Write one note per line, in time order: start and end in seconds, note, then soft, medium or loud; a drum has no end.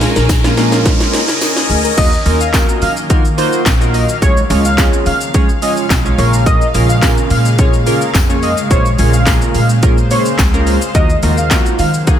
0.00 0.13 G#3 medium
0.00 0.13 A#3 medium
0.00 0.13 C#4 medium
0.00 1.94 C#4 medium
0.00 0.13 F4 loud
0.00 0.14 G#4 medium
0.00 1.94 A#4 medium
0.00 1.95 D#5 medium
0.00 1.94 G#5 medium
0.00 snare loud
0.00 open hi-hat medium
0.00 riser medium
0.00 shaker medium
0.16 0.91 A#1 medium
0.16 0.27 A#4 loud
0.16 snare loud
0.16 shaker medium
0.29 kick loud
0.29 snare loud
0.29 closed hi-hat medium
0.29 tambourine medium
0.29 shaker medium
0.44 0.52 G#3 medium
0.44 0.52 A#3 medium
0.44 0.52 C#4 medium
0.44 0.52 F4 loud
0.44 snare loud
0.44 shaker medium
0.57 1.21 G#3 medium
0.57 0.70 A#3 medium
0.57 1.21 A#3 medium
0.57 1.21 C#4 medium
0.57 1.21 F4 loud
0.57 snare loud
0.57 open hi-hat medium
0.57 shaker medium
0.72 0.83 C#4 medium
0.72 snare loud
0.72 shaker medium
0.85 0.98 G#4 medium
0.85 kick loud
0.85 snare loud
0.85 closed hi-hat medium
0.85 shaker medium
1.00 snare loud
1.00 shaker medium
1.13 1.26 C#5 medium
1.13 snare loud
1.13 open hi-hat medium
1.13 shaker medium
1.28 snare loud
1.28 shaker medium
1.41 snare loud
1.41 closed hi-hat medium
1.41 tambourine medium
1.41 shaker medium
1.56 1.67 C#4 medium
1.56 snare loud
1.56 shaker medium
1.70 1.88 D2 medium
1.70 1.82 G#4 medium
1.70 open hi-hat medium
1.70 shaker soft
1.84 1.95 A#4 loud
1.84 shaker medium
1.97 2.16 D#2 loud
1.97 4.20 D#3 medium
1.97 4.20 F#3 medium
1.97 2.11 A#3 medium
1.97 4.20 A#3 medium
1.97 2.12 D#4 medium
1.97 2.12 F4 medium
1.97 2.12 F#4 medium
1.97 2.12 A#4 medium
1.97 2.18 D#5 loud
1.97 10.91 F5 medium
1.97 kick loud
1.97 closed hi-hat medium
1.97 crash loud
1.97 shaker medium
2.13 shaker soft
2.25 2.63 D#2 loud
2.25 2.40 A#3 medium
2.25 2.40 D#4 medium
2.25 2.40 F4 medium
2.25 2.40 F#4 medium
2.25 2.40 A#4 medium
2.25 open hi-hat medium
2.25 shaker medium
2.41 2.61 F5 medium
2.41 shaker medium
2.53 2.85 A#3 medium
2.53 2.85 D#4 medium
2.53 2.85 F4 medium
2.53 2.85 F#4 medium
2.53 2.85 A#4 medium
2.53 kick loud
2.53 snare medium
2.53 clap loud
2.53 closed hi-hat medium
2.53 tambourine medium
2.53 shaker medium
2.69 shaker medium
2.82 3.38 D#3 medium
2.82 2.93 F5 medium
2.82 open hi-hat medium
2.82 shaker medium
2.97 shaker medium
3.09 3.23 A#3 medium
3.09 3.24 D#4 medium
3.09 3.24 F4 medium
3.09 3.24 F#4 medium
3.09 3.24 A#4 loud
3.09 kick loud
3.09 closed hi-hat medium
3.09 shaker medium
3.25 shaker medium
3.37 3.62 A#3 medium
3.37 3.62 D#4 medium
3.37 3.62 F4 medium
3.37 3.62 F#4 medium
3.37 3.62 C5 loud
3.37 open hi-hat medium
3.37 shaker medium
3.53 shaker medium
3.66 4.03 A#1 medium
3.66 kick loud
3.66 snare medium
3.66 clap loud
3.66 closed hi-hat medium
3.66 tambourine loud
3.66 shaker medium
3.81 4.04 A#3 medium
3.81 4.04 D#4 medium
3.81 4.04 F4 medium
3.81 4.04 F#4 medium
3.81 4.04 A#4 medium
3.81 shaker medium
3.94 4.05 D#5 medium
3.94 open hi-hat medium
3.94 shaker medium
4.09 shaker loud
4.22 4.41 C#2 loud
4.22 10.91 C#3 medium
4.22 6.16 F3 medium
4.22 4.36 G#3 medium
4.22 10.91 G#3 medium
4.22 4.36 C#4 medium
4.22 4.36 F4 medium
4.22 4.36 G#4 medium
4.22 4.42 C#5 loud
4.22 4.36 C#5 medium
4.22 kick loud
4.22 closed hi-hat medium
4.22 shaker medium
4.37 shaker soft
4.50 4.87 C#2 loud
4.50 4.64 G#3 medium
4.50 4.64 C#4 medium
4.50 4.64 F4 medium
4.50 4.64 G#4 medium
4.50 4.64 C#5 medium
4.50 open hi-hat medium
4.50 shaker medium
4.65 4.85 F5 medium
4.65 shaker medium
4.78 5.10 G#3 medium
4.78 5.10 C#4 medium
4.78 5.10 F4 medium
4.78 5.10 G#4 medium
4.78 5.10 C#5 medium
4.78 kick loud
4.78 snare medium
4.78 clap loud
4.78 closed hi-hat medium
4.78 tambourine medium
4.78 shaker medium
4.93 shaker medium
5.06 5.62 C#3 medium
5.06 5.17 F5 medium
5.06 open hi-hat medium
5.06 shaker medium
5.21 shaker medium
5.34 5.48 G#3 loud
5.34 5.48 C#4 medium
5.34 5.48 F4 medium
5.34 5.49 G#4 medium
5.34 5.49 C#5 loud
5.34 kick loud
5.34 closed hi-hat medium
5.34 shaker medium
5.49 shaker medium
5.62 5.86 G#3 medium
5.62 5.86 C#4 medium
5.62 5.86 F4 medium
5.62 5.86 G#4 medium
5.62 5.86 C#5 medium
5.62 5.73 D#5 medium
5.62 open hi-hat medium
5.62 shaker medium
5.77 shaker medium
5.90 6.09 B1 loud
5.90 kick loud
5.90 snare medium
5.90 clap loud
5.90 closed hi-hat medium
5.90 tambourine loud
5.90 shaker medium
6.05 6.18 G#3 medium
6.05 6.17 C#4 medium
6.05 6.17 F4 medium
6.05 6.17 G#4 medium
6.05 6.19 C#5 medium
6.05 shaker medium
6.18 6.56 A#1 loud
6.18 6.64 A#3 medium
6.18 8.41 A#3 medium
6.18 6.64 C#4 medium
6.18 6.64 F4 medium
6.18 6.64 G#4 medium
6.18 6.64 A#4 medium
6.18 6.29 C#5 medium
6.18 open hi-hat medium
6.18 shaker soft
6.33 shaker medium
6.46 6.67 D#5 loud
6.46 kick loud
6.46 closed hi-hat medium
6.46 shaker medium
6.61 shaker soft
6.74 7.12 A#1 loud
6.74 6.88 A#3 medium
6.74 6.88 C#4 medium
6.74 6.88 F4 medium
6.74 6.89 G#4 medium
6.74 6.89 A#4 medium
6.74 open hi-hat medium
6.74 shaker medium
6.89 7.10 F5 medium
6.89 shaker medium
7.02 7.34 A#3 medium
7.02 7.34 C#4 medium
7.02 7.34 F4 medium
7.02 7.34 G#4 medium
7.02 7.34 A#4 medium
7.02 kick loud
7.02 snare medium
7.02 clap loud
7.02 closed hi-hat medium
7.02 tambourine medium
7.02 shaker medium
7.18 shaker medium
7.30 7.86 A#2 medium
7.30 7.41 F5 medium
7.30 open hi-hat medium
7.30 shaker medium
7.45 shaker medium
7.58 7.72 A#3 medium
7.58 7.73 C#4 medium
7.58 7.73 F4 medium
7.58 7.73 G#4 medium
7.58 7.73 C#5 loud
7.58 kick loud
7.58 closed hi-hat medium
7.58 shaker medium
7.74 shaker medium
7.86 8.10 A#3 medium
7.86 8.10 C#4 medium
7.86 8.10 F4 medium
7.86 8.10 G#4 medium
7.86 8.11 A#4 loud
7.86 open hi-hat medium
7.86 shaker medium
8.01 shaker medium
8.15 8.52 F2 loud
8.15 kick loud
8.15 snare medium
8.15 clap loud
8.15 closed hi-hat medium
8.15 tambourine loud
8.15 shaker medium
8.29 8.53 A#3 medium
8.29 8.53 C#4 medium
8.29 8.53 F4 medium
8.29 8.53 G#4 medium
8.29 8.53 C#5 medium
8.29 shaker medium
8.42 10.92 C5 medium
8.42 8.54 D#5 medium
8.42 open hi-hat medium
8.42 shaker soft
8.57 shaker medium
8.70 8.89 A#1 loud
8.70 8.84 A#3 medium
8.70 8.85 C#4 medium
8.70 8.85 F4 medium
8.70 8.85 G#4 medium
8.70 8.85 C5 medium
8.70 8.91 C#5 loud
8.70 kick loud
8.70 closed hi-hat medium
8.70 shaker medium
8.86 shaker medium
8.99 9.36 A#1 loud
8.99 9.13 A#3 medium
8.99 9.13 C#4 medium
8.99 9.13 F4 medium
8.99 9.13 G#4 medium
8.99 9.13 C#5 medium
8.99 open hi-hat medium
8.99 shaker medium
9.13 9.34 F5 medium
9.13 shaker medium
9.27 9.58 A#3 medium
9.27 9.58 C#4 medium
9.27 9.58 F4 medium
9.27 9.58 G#4 medium
9.27 9.58 A#4 medium
9.27 kick loud
9.27 snare medium
9.27 clap loud
9.27 closed hi-hat medium
9.27 tambourine medium
9.27 shaker medium
9.42 shaker medium
9.55 10.11 A#2 medium
9.55 9.66 F5 medium
9.55 open hi-hat medium
9.55 shaker medium
9.69 shaker medium
9.83 9.97 A#3 medium
9.83 9.97 C#4 medium
9.83 9.97 F4 medium
9.83 9.97 G#4 medium
9.83 9.97 A#4 loud
9.83 kick loud
9.83 closed hi-hat medium
9.83 shaker medium
9.98 shaker medium
10.11 10.35 A#3 medium
10.11 10.35 C#4 medium
10.11 10.35 F4 medium
10.11 10.35 G#4 medium
10.11 10.35 C5 medium
10.11 10.22 C#5 medium
10.11 open hi-hat medium
10.11 shaker medium
10.25 shaker medium
10.39 10.76 C#2 medium
10.39 kick loud
10.39 snare medium
10.39 clap loud
10.39 closed hi-hat medium
10.39 tambourine loud
10.39 shaker medium
10.54 10.77 A#3 medium
10.54 10.77 C#4 medium
10.54 10.77 F4 medium
10.54 10.77 G#4 medium
10.54 10.77 A#4 loud
10.54 shaker medium
10.67 open hi-hat medium
10.67 shaker medium
10.82 shaker medium
10.95 11.14 D#2 loud
10.95 12.20 D#3 medium
10.95 12.20 F#3 medium
10.95 11.09 A#3 medium
10.95 12.20 A#3 medium
10.95 11.09 D#4 medium
10.95 11.09 F4 medium
10.95 11.09 F#4 medium
10.95 11.09 A#4 medium
10.95 11.15 D#5 loud
10.95 12.20 F5 medium
10.95 kick loud
10.95 closed hi-hat medium
10.95 shaker medium
11.10 shaker soft
11.23 11.60 D#2 loud
11.23 11.37 A#3 medium
11.23 11.37 D#4 medium
11.23 11.37 F4 medium
11.23 11.37 F#4 medium
11.23 11.37 A#4 medium
11.23 open hi-hat medium
11.23 shaker medium
11.38 11.58 F5 medium
11.38 shaker medium
11.51 11.82 A#3 medium
11.51 11.83 D#4 medium
11.51 11.83 F4 medium
11.51 11.83 F#4 medium
11.51 11.83 A#4 medium
11.51 kick loud
11.51 snare medium
11.51 clap loud
11.51 closed hi-hat medium
11.51 tambourine medium
11.51 shaker medium
11.66 shaker medium
11.79 12.20 D#3 medium
11.79 11.90 F5 medium
11.79 open hi-hat medium
11.79 shaker medium
11.94 shaker medium
12.07 12.20 A#3 loud
12.07 12.20 D#4 medium
12.07 12.20 F4 medium
12.07 12.20 F#4 medium
12.07 12.20 G#4 loud
12.07 kick loud
12.07 closed hi-hat medium
12.07 shaker medium